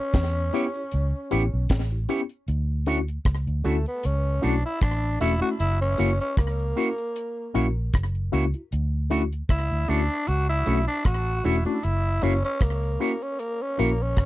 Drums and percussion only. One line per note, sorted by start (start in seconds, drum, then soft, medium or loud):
0.14 kick loud
0.14 snare loud
0.14 closed hi-hat medium
0.35 closed hi-hat medium
0.53 closed hi-hat medium
0.75 closed hi-hat medium
0.91 closed hi-hat loud
1.31 closed hi-hat medium
1.69 kick loud
1.69 snare loud
1.69 closed hi-hat medium
1.91 closed hi-hat soft
2.09 closed hi-hat medium
2.29 closed hi-hat medium
2.48 closed hi-hat medium
2.86 closed hi-hat medium
3.08 closed hi-hat medium
3.25 kick loud
3.25 cross-stick loud
3.25 closed hi-hat medium
3.47 closed hi-hat medium
3.65 closed hi-hat medium
3.86 closed hi-hat medium
4.03 closed hi-hat medium
4.43 closed hi-hat medium
4.81 kick loud
4.81 cross-stick loud
4.81 closed hi-hat medium
5.03 closed hi-hat soft
5.21 closed hi-hat medium
5.42 closed hi-hat medium
5.60 closed hi-hat medium
5.98 closed hi-hat medium
6.20 closed hi-hat soft
6.37 kick loud
6.37 cross-stick loud
6.37 closed hi-hat medium
6.60 closed hi-hat medium
6.77 closed hi-hat medium
6.98 closed hi-hat soft
7.16 closed hi-hat medium
7.55 closed hi-hat medium
7.93 kick loud
7.93 cross-stick loud
7.93 closed hi-hat medium
8.15 closed hi-hat medium
8.33 closed hi-hat medium
8.54 closed hi-hat soft
8.72 closed hi-hat medium
9.10 closed hi-hat medium
9.32 closed hi-hat soft
9.49 kick loud
9.49 cross-stick loud
9.49 closed hi-hat medium
9.71 closed hi-hat medium
9.88 closed hi-hat medium
10.10 closed hi-hat medium
10.27 closed hi-hat medium
10.66 closed hi-hat medium
11.04 kick loud
11.04 cross-stick loud
11.04 closed hi-hat medium
11.26 closed hi-hat medium
11.44 closed hi-hat medium
11.65 closed hi-hat medium
11.83 closed hi-hat medium
12.22 closed hi-hat medium
12.44 closed hi-hat soft
12.61 kick loud
12.61 cross-stick loud
12.61 closed hi-hat medium
12.83 closed hi-hat medium
13.01 closed hi-hat medium
13.22 closed hi-hat medium
13.39 closed hi-hat medium
13.79 closed hi-hat medium
14.17 kick loud
14.17 cross-stick loud
14.17 closed hi-hat medium